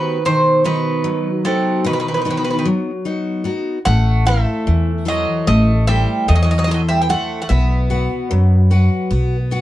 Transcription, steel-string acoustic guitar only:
Already playing: B3 F#4 G4
0.25 B2
0.64 B3 D#4 F#4
1.04 F#3
1.45 B3 D#4 F#4
1.85 B2
2.25 B3 D#4 F#4
2.65 F#3
3.05 B3 D#4 F#4
3.44 B3 D#4 F#4
3.86 A3
4.26 E4 A4 C5
4.67 E3
5.05 E4 A4 C5
5.47 A3
5.88 E4 A4 C5
6.28 E3
6.67 E4 A4 C5
7.09 E4 A4 C5
7.50 B3
7.90 F#4 B4 F#5
8.31 F#3
8.71 F#4 B4 F#5
9.11 B3
9.51 F#4 B4 F#5

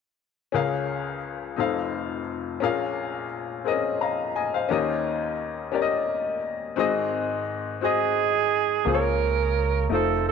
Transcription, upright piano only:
0.52 C#2 C#3 C#4 G#4 A#4 F5
1.56 F1 F2 D#4 A4 C5 F5
2.60 A#1 A#2 C#4 G#4 A#4 F5
3.65 C4 G#4 A#4 D#5
3.71 C#4
4.01 F5 A#5
4.36 D#5 G#5
4.54 C5 F5
4.69 D#2 D#3 C#4 G4 A#4 D#5
5.72 C#4 G4 A#4 D5
5.82 D#5
6.76 G#1 G#2 C4 F#4 G#4 D#5
7.81 C4 F#4 G#4 D#5
8.85 C#3 A#3 F4 G#4 C5
8.94 C#5
9.89 A3 D#4 F4 C5

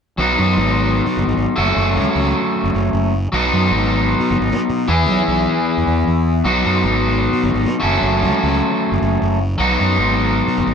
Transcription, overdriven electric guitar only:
0.18 F#3 B3 D#4 F#4
1.56 F#3 A3 C#4 F#4
3.32 F#3 B3 D#4 F#4
4.88 E3 B3 E4 G#4
6.44 F#3 B3 D#4 F#4
7.80 F#3 A3 C#4 F#4
9.58 F#3 B3 D#4 F#4

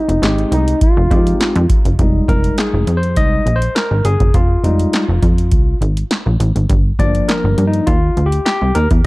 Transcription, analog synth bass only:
0.08 F1
0.22 G#1
0.52 C2
0.97 F1
1.11 F2
1.56 F2
1.85 F#1
1.99 F1
2.28 F1
2.74 F1
2.87 F2
3.17 C2
3.46 A#1
3.91 G#1
4.05 G1
4.20 F#1
4.34 F1
4.64 F1
5.08 F1
5.23 F2
5.52 C2
5.81 G#1
6.26 A#1
6.40 A1
6.56 G#1
6.70 G1
6.99 G1
7.44 G1
7.58 G2
7.87 D#2
8.17 D2
8.62 C2
8.76 D#2
8.91 E2

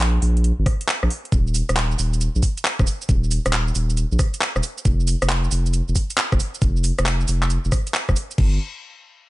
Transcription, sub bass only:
Already playing: A#1
0.22 A#1
0.59 G#1
1.03 A#1
1.32 D#1
1.69 D#1
1.99 D#1
2.35 A#1
2.79 D#1
3.09 D#1
3.46 D#1
3.75 D#1
4.12 A#1
4.56 D#1
4.85 F1
5.22 F1
5.52 F1
5.88 F1
6.32 F1
6.62 F1
6.99 F1
7.28 F1
7.65 F1
8.09 F1
8.38 G1

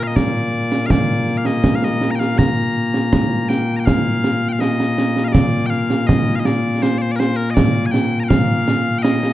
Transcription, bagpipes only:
Already playing: A#2 A#3
0.03 D#5 F5
0.16 D5
0.86 F5
0.91 D5
1.38 F5
1.46 D#5
1.75 F5
1.84 D#5
2.11 A#5
2.15 G5
2.19 F5
2.38 A#5
3.49 G5
3.76 G5 A#5
3.86 F5
4.49 F5 G5
4.61 D#5
5.24 D#5 F5
5.33 D5
5.66 F5 G5
6.07 D#5
6.35 F5
6.40 D#5
6.46 D5
6.82 C5
6.98 C5 D5
7.12 D5
7.16 A#4 C5
7.36 A#4
7.51 D#5
7.55 D5
7.86 G#5
7.91 G5
8.20 G5 A#5
8.29 F5
8.99 D#5 G5

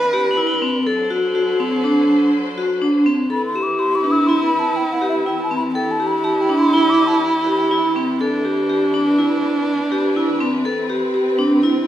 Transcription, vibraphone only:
0.13 G4
0.37 E4
0.62 C4
0.87 A4
1.10 F#4
1.35 F#4
1.60 C4
1.84 D4
2.58 F#4
2.82 D4
3.06 C4
3.30 A4
3.55 G4
3.79 G4
4.04 D4
4.29 E4
5.01 G4
5.26 E4
5.51 C4
5.75 A4
6.00 G4
6.24 G4
6.49 D4
6.74 E4
7.47 G4
7.71 E4
7.96 C4
8.21 A4
8.45 G4
8.70 G4
8.94 D4
9.19 E4
9.92 G4
10.16 E4
10.40 C4
10.65 A4
10.90 G4
11.14 G4
11.39 D4
11.63 E4

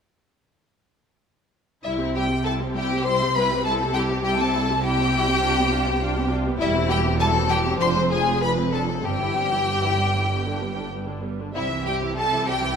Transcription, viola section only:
1.85 G3 E4
2.00 C4 G4
2.16 G3 E4
2.30 C4 G4
2.45 G3 E4
2.61 C4 G4
2.76 G3 E4
2.91 C4 G4
3.06 G3 E4
3.21 C4 G4
3.36 G3 E4
3.51 C4 G4
3.65 G3 E4
3.80 C4 G4
3.95 G3 E4
4.10 C4 G4
4.25 G3 E4
4.39 C4 G4
4.55 G3 E4
4.70 C4 G4
4.84 G3 E4
4.99 C4 G4
5.14 G3 E4
5.28 C4 G4
5.43 D4 F4
5.58 B3 G4
5.72 D4 F4
5.87 B3 G4
6.02 D4 F4
6.16 B3 G4
6.31 D4 F4
6.46 B3 G4
6.61 G3 E4
6.76 C4 G4
6.90 G3 E4
7.04 C4 G4
7.20 G3 E4
7.34 C4 G4
7.50 G3 E4
7.65 C4 G4
7.80 F3 D4
7.95 G#3 C4
8.11 F3 D4
8.27 G#3 C4
8.42 F3 D4
8.57 G#3 C4
8.72 F3 D4
8.88 G#3 C4
9.04 G3 C4
9.21 E3 E4
9.36 G3 C4
9.52 E3 E4
9.68 G3 C4
9.83 E3 E4
9.99 G3 C4
10.15 E3 E4
10.30 G3 B3
10.46 D3 D4
10.62 G3 B3
10.77 D3 D4
10.93 G3 B3
11.08 D3 D4
11.23 G3 B3
11.39 D3 D4
11.54 G3 C4
11.71 E3 E4
11.87 G3 C4
12.02 E3 E4
12.17 G3 C4
12.32 E3 E4
12.47 G3 C4
12.63 E3 E4

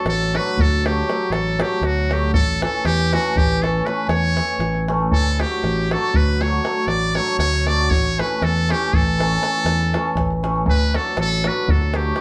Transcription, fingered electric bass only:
0.05 A1
0.57 D2
1.30 A1
1.81 D2
2.33 A1
2.85 E2
3.36 A1
4.08 E2
4.59 A1
5.11 D2
5.64 A1
6.15 D2
6.87 A1
7.39 D2
7.90 A1
8.42 E2
8.93 A1
9.64 E2
10.15 A1
10.66 D2
11.17 A1
11.68 D2

